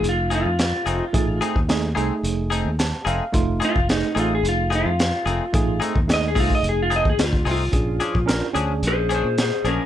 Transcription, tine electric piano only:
0.00 0.53 A3 medium
0.00 0.54 D#4 medium
0.00 0.54 F4 medium
1.13 1.53 A3 medium
1.13 1.53 D#4 medium
1.13 1.53 G#4 medium
1.68 1.89 A3 medium
1.68 1.89 D#4 medium
1.68 1.89 G#4 medium
1.95 2.73 A3 medium
1.95 2.73 D#4 medium
1.95 2.74 G#4 medium
2.79 3.05 A5 medium
3.07 3.32 F5 medium
3.32 3.72 A3 medium
3.32 3.73 D#4 medium
3.32 3.73 F4 medium
3.88 4.08 A3 medium
3.88 4.09 D#4 medium
3.88 4.09 G#4 medium
4.15 4.93 A3 medium
4.15 4.93 D#4 medium
4.15 4.93 G#4 medium
5.53 5.92 A3 medium
5.53 5.93 D#4 medium
5.53 5.93 G#4 medium
6.07 6.28 A3 medium
6.07 6.28 D#4 medium
6.07 6.28 G#4 medium
6.35 7.13 A3 medium
6.35 7.13 D#4 medium
6.35 7.13 G#4 medium
7.72 8.11 C#4 medium
7.72 8.12 D4 medium
7.72 8.12 G#4 medium
8.26 8.47 C#4 medium
8.26 8.47 D4 medium
8.26 8.47 A#4 medium
8.53 9.31 C#4 medium
8.53 9.32 D4 medium
8.53 9.32 G#4 medium

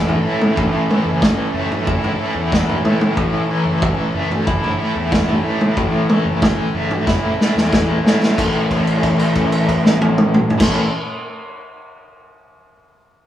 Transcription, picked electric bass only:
0.00 0.17 E2 medium
0.24 0.52 A2 medium
0.57 0.85 A1 medium
1.05 1.33 F#1 medium
1.54 1.68 F#1 medium
1.87 2.15 F#1 medium
2.35 2.77 E2 medium
2.85 3.13 A2 medium
3.17 3.45 A1 medium
3.66 3.94 F#1 medium
4.14 4.28 F#1 medium
4.47 4.75 F#1 medium
4.95 5.38 E2 medium
5.44 5.72 A2 medium
5.77 6.05 A1 medium
6.25 6.54 F#1 medium
6.74 6.88 F#1 medium
7.07 7.35 F#1 medium
7.56 7.98 E2 medium
8.04 8.33 A2 medium
8.38 10.48 A1 medium
10.59 10.87 A1 medium

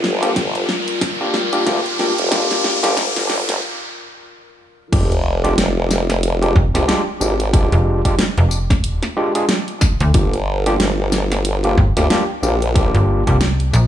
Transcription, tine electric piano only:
0.22 0.31 A#3 medium
0.22 0.31 D4 medium
0.22 0.31 F4 medium
0.22 0.31 G4 loud
1.21 1.35 A#3 medium
1.21 1.35 D4 medium
1.21 1.35 F4 medium
1.21 1.35 G4 medium
1.53 1.62 A#3 medium
1.53 1.62 D4 medium
1.53 1.62 F4 medium
1.53 1.62 G4 medium
1.67 1.79 A#3 medium
1.67 1.79 D4 medium
1.67 1.79 F4 medium
1.67 1.79 G4 loud
2.00 2.12 A#3 medium
2.00 2.12 D4 medium
2.00 2.12 F4 medium
2.00 2.12 G4 medium
2.32 2.79 A#3 medium
2.32 2.79 D4 medium
2.32 2.79 F4 medium
2.32 2.79 G4 loud
2.83 2.92 A#3 medium
2.83 2.92 D4 medium
2.83 2.92 F4 medium
2.83 2.92 G4 loud
4.92 5.13 G#3 medium
4.92 5.13 D4 medium
4.92 5.13 F4 medium
4.92 5.13 G4 medium
5.44 5.53 G#3 medium
5.44 5.53 D4 medium
5.44 5.53 F4 medium
5.44 5.53 G4 loud
6.42 6.57 G#3 medium
6.42 6.57 D4 medium
6.42 6.57 F4 medium
6.42 6.57 G4 medium
6.74 6.84 G#3 medium
6.74 6.84 D4 medium
6.74 6.84 F4 medium
6.74 6.84 G4 medium
6.88 7.01 G#3 medium
6.88 7.01 D4 medium
6.88 7.01 F4 medium
6.88 7.01 G4 loud
7.20 7.33 G#3 medium
7.20 7.33 D4 medium
7.20 7.33 F4 medium
7.20 7.33 G4 medium
7.53 8.01 G#3 medium
7.53 8.01 D4 medium
7.53 8.01 F4 medium
7.53 8.01 G4 medium
8.05 8.14 G#3 medium
8.05 8.14 D4 medium
8.05 8.14 F4 medium
8.05 8.14 G4 medium
9.17 9.31 G#3 medium
9.17 9.31 D4 medium
9.17 9.31 F4 medium
9.17 9.31 G4 medium
9.35 9.44 G#3 medium
9.35 9.44 D4 medium
9.35 9.44 F4 medium
9.35 9.44 G#4 medium
10.14 10.34 A#3 medium
10.14 10.34 D4 medium
10.14 10.34 F4 medium
10.14 10.34 G4 medium
10.66 10.75 A#3 medium
10.66 10.75 D4 medium
10.66 10.75 F4 medium
10.66 10.75 G4 loud
11.64 11.79 A#3 medium
11.64 11.79 D4 medium
11.64 11.79 F4 medium
11.64 11.79 G4 medium
11.97 12.06 A#3 medium
11.97 12.06 D4 medium
11.97 12.06 F4 medium
11.97 12.06 G4 medium
12.10 12.23 A#3 medium
12.10 12.23 D4 medium
12.10 12.23 F4 medium
12.10 12.23 G4 loud
12.43 12.55 A#3 medium
12.43 12.55 D4 medium
12.43 12.55 F4 medium
12.43 12.55 G4 medium
12.75 13.22 A#3 medium
12.75 13.22 D4 medium
12.75 13.22 F4 medium
12.75 13.22 G4 loud
13.27 13.36 A#3 medium
13.27 13.36 D4 medium
13.27 13.36 F4 medium
13.27 13.36 G4 loud

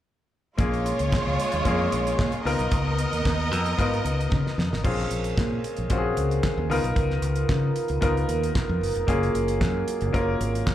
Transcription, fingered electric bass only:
0.59 0.92 A#1 medium
1.00 1.10 C#2 medium
1.27 1.37 C#2 medium
1.53 1.63 D#2 medium
1.65 1.87 F2 medium
1.93 2.14 A#1 medium
2.19 2.30 A#2 medium
2.45 2.57 C#2 medium
2.59 2.69 B1 medium
2.72 3.05 C#2 loud
3.13 3.23 D#2 medium
3.25 3.51 D#2 medium
3.51 3.73 F2 medium
3.79 4.00 G#2 medium
4.05 4.26 C#2 medium
4.32 4.43 C#3 loud
4.58 4.69 F2 loud
4.72 4.82 G#1 medium
4.85 5.06 A#1 loud
5.11 5.32 A#1 medium
5.37 5.59 A#2 medium
5.78 5.88 A#1 medium
5.90 6.12 A#1 medium
6.17 6.38 C#2 medium
6.58 6.67 D#2 medium
6.70 6.81 C#2 medium
6.84 6.94 B1 medium
6.96 7.18 C#2 loud
7.22 7.44 C#2 medium
7.49 7.70 C#3 medium
7.90 8.00 C#2 medium
8.02 8.24 C#2 medium
8.29 8.50 D#2 medium
8.69 8.79 F2 loud
8.81 8.93 F#1 medium
8.95 9.06 F1 medium
9.08 9.29 F#1 loud
9.35 9.63 F#1 medium
9.61 9.82 F#2 medium
10.02 10.12 F#1 loud
10.14 10.35 F#1 medium
10.41 10.62 G#1 loud

